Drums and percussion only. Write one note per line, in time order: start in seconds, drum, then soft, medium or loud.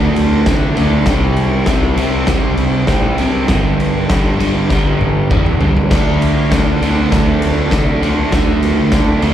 0.16 ride medium
0.46 kick loud
0.46 snare loud
0.46 ride loud
0.77 ride medium
1.06 kick loud
1.06 snare loud
1.06 ride loud
1.37 ride medium
1.66 kick loud
1.66 snare loud
1.66 ride loud
1.97 ride medium
2.27 kick loud
2.27 snare loud
2.27 ride loud
2.57 ride medium
2.87 kick loud
2.87 snare loud
2.87 ride loud
3.18 ride medium
3.48 kick loud
3.48 snare loud
3.48 ride loud
3.80 ride medium
4.10 kick loud
4.10 snare loud
4.10 ride loud
4.40 ride medium
4.70 kick loud
4.70 snare medium
5.01 high tom medium
5.31 kick loud
5.31 mid tom medium
5.46 mid tom medium
5.61 floor tom loud
5.77 floor tom medium
5.91 kick loud
5.91 snare loud
5.91 crash loud
6.22 ride medium
6.52 kick loud
6.52 snare loud
6.52 ride loud
6.82 ride medium
7.12 kick loud
7.12 snare loud
7.12 ride loud
7.42 ride medium
7.71 kick loud
7.71 snare loud
7.71 ride loud
8.03 ride medium
8.32 kick loud
8.32 snare loud
8.32 ride loud
8.63 ride medium
8.92 kick loud
8.92 snare loud
8.92 ride loud
9.22 ride medium